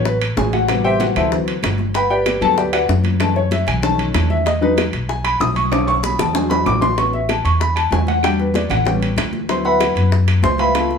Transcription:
Already playing: upright bass A1, grand piano E3 F#3 B3
0.05 grand piano B4, high bongo, high conga
0.21 high bongo, high conga, high timbale, claves
0.37 upright bass A1, grand piano G#4 G#5, high bongo, low bongo, high conga, low timbale
0.53 grand piano F#4 F#5, high conga, high timbale
0.68 grand piano C3 G3 B3, high bongo, high conga, high timbale, claves
0.84 grand piano G4 C5 E5 G5, high bongo, high conga
1.00 grand piano F#4 F#5, high bongo, high conga, high timbale
1.16 upright bass D2, grand piano E4 A4 C5 E5, high bongo, high conga, low conga, high timbale, claves
1.31 grand piano E3 F#3 C4, high bongo, high conga
1.47 high conga, high timbale
1.63 upright bass G1, high bongo, low bongo, high conga, high timbale, low timbale, claves
1.78 high bongo, high conga
1.94 grand piano B4 F#5 G5 B5, high bongo, high conga, high timbale
2.10 grand piano G4 B4 D5 G5, high bongo, high conga
2.26 high bongo, high conga, high timbale, claves
2.41 upright bass D2, grand piano F#3 A3 B3 A4 A5, high bongo, high conga, high timbale
2.57 grand piano G4 B4 D5 G5, high bongo, high conga
2.73 grand piano F#4 B4 D5 F#5, high bongo, high conga, high timbale, claves
2.89 upright bass F#2, high bongo, low bongo, high conga
3.04 high conga, high timbale
3.20 grand piano E3 G#3 A3 A5, high bongo, high conga, high timbale, claves
3.36 grand piano C#5, high bongo, high conga
3.51 grand piano E5, high bongo, high conga, high timbale
3.67 upright bass B1, grand piano G#5, high bongo, high conga, low conga, high timbale, claves
3.83 grand piano D#3 A3 C#4 A5, high bongo, high conga, low conga
3.98 high conga, high timbale
4.14 upright bass E2, high bongo, low bongo, high conga, high timbale, claves
4.30 grand piano E5, high bongo, high conga
4.46 grand piano D#5, high bongo, high conga, high timbale
4.61 grand piano F#3 G#3 D#4 B4, high bongo, high conga
4.77 high bongo, high conga, high timbale, claves
4.93 upright bass B1, high bongo, high conga, high timbale
5.09 grand piano G#5, high bongo, high conga
5.24 grand piano B5, high bongo, high conga, high timbale, claves
5.40 upright bass B1, grand piano D#6, high bongo, low bongo, high conga, low timbale
5.55 grand piano C#6, high conga, high timbale
5.71 grand piano D3 A3 C#4 D6, high bongo, high conga, high timbale, claves
5.87 grand piano C#6, high bongo, high conga, high timbale
6.03 grand piano B5, high bongo, high conga
6.19 upright bass E2, grand piano A5, high bongo, high conga, low conga, low timbale, claves
6.34 grand piano F#3 G#3 D4 G#5, low bongo, low timbale
6.50 grand piano B5, low bongo, high conga, low timbale
6.66 upright bass A1, grand piano D6, low bongo, high conga, low timbale, claves
6.81 grand piano C6, low bongo, high conga, low timbale
6.97 grand piano B3 C#4 F#4 C#6, high bongo, high conga, high timbale
7.13 grand piano E5, high bongo, high conga
7.29 grand piano A5, high bongo, high conga, high timbale, claves
7.44 upright bass E2, grand piano C#6, high bongo, high conga, high timbale
7.60 grand piano B5, high bongo, high conga
7.75 grand piano A5, high bongo, high conga, high timbale, claves
7.91 upright bass E2, grand piano G#5, high bongo, low bongo, high conga, low timbale
8.07 grand piano F#5, high conga, high timbale
8.23 grand piano G3 D4 F#4 G5, high bongo, high conga, high timbale, claves
8.38 grand piano B4, high bongo, high conga
8.54 grand piano D5, high bongo, high conga, high timbale
8.70 upright bass A1, grand piano F#5, high bongo, high conga, low conga, high timbale, claves
8.85 grand piano G3 B3 C#4 G5, high bongo, high conga, low conga
9.01 high conga, high timbale
9.17 upright bass D2, high bongo, low bongo, high conga, high timbale, claves
9.33 high bongo, high conga
9.49 grand piano F#3 B3 E4 C5 C6, high bongo, high conga, high timbale
9.65 grand piano B4 E5 F#5 B5, high bongo, high conga
9.80 high bongo, high conga, high timbale, claves
9.95 upright bass F#2, high bongo, high conga, high timbale
10.12 high bongo, high conga
10.27 high bongo, high conga, high timbale, claves
10.43 upright bass C#2, grand piano C5 C6, high bongo, low bongo, high conga, low timbale
10.58 grand piano B4 E5 F5 B5, high conga, high timbale
10.75 grand piano A3 B3 F4, high bongo, high conga, high timbale, claves
10.90 high bongo, high conga

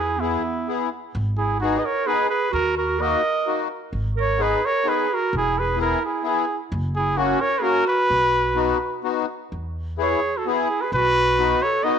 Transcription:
Already playing: upright bass E2, clarinet E4, trumpet G#4
0.18 clarinet B3, accordion B3 E4 G#4, trumpet E4
0.68 accordion B3 E4 G#4
1.15 upright bass G#1
1.37 clarinet E4, trumpet G#4
1.60 accordion B3 D#4 G#4, clarinet D#4, trumpet F#4
1.78 clarinet B4, trumpet D#5
1.84 clarinet A#4, trumpet C#5
2.06 accordion B3 D#4 G#4, clarinet G#4, trumpet B4
2.30 clarinet G#4, trumpet B4
2.51 upright bass D#2, clarinet F#4, trumpet A#4
2.77 clarinet F#4, trumpet A#4
2.99 accordion A#3 D#4 F#4, clarinet A#4, trumpet D#5
3.46 accordion A#3 D#4 F#4
3.93 upright bass G#1
4.17 clarinet A#4, trumpet C#5
4.38 accordion B3 D#4 G#4, clarinet G#4
4.42 trumpet B4
4.65 clarinet A#4, trumpet C#5
4.84 accordion B3 D#4 G#4
4.88 clarinet G#4, trumpet B4
5.13 clarinet F#4, trumpet A#4
5.33 upright bass E1, clarinet E4
5.37 trumpet G#4
5.59 clarinet G#4, trumpet B4
5.75 accordion B3 E4 G#4
5.82 clarinet E4, trumpet A#4
6.05 clarinet E4, trumpet G#4
6.23 accordion B3 E4 G#4
6.28 clarinet E4, trumpet G#4
6.72 upright bass F#1
6.96 clarinet E4, trumpet G#4
7.16 accordion A#3 C#4 F#4, clarinet C#4, trumpet F#4
7.41 clarinet A#4, trumpet C#5
7.58 accordion A#3 C#4, clarinet G#4, trumpet A#4 B4
7.63 accordion F#4, clarinet F#4
7.87 clarinet F#4, trumpet B4
8.10 upright bass B1
8.54 accordion B3 D#4 F#4
9.03 accordion B3 D#4 F#4
9.52 upright bass E2
9.97 accordion B3 E4 G#4
10.02 clarinet G#4, trumpet C#5
10.37 clarinet F#4, trumpet A4
10.46 accordion B3 E4 G#4, clarinet E4, trumpet G#4
10.81 clarinet G#4, trumpet B4
10.92 upright bass B1, clarinet F#4, trumpet B4
11.38 accordion B3 D#4 F#4
11.62 clarinet A4, trumpet C#5
11.84 accordion B3 D#4 F#4, clarinet B4, trumpet D#5

